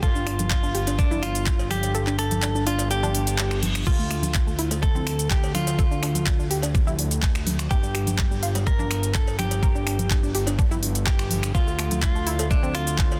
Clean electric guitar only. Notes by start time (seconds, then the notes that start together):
0.03 F4
0.51 F4
0.99 D4
1.23 F4
1.71 G4
2.19 A4
2.67 F4
2.91 G4
3.87 F4
4.83 A4
5.31 G4
5.55 F4
7.71 G4
8.67 A#4
9.15 A4
9.39 G4
11.07 G4
11.55 F4
12.03 F4
12.51 D4
12.75 F4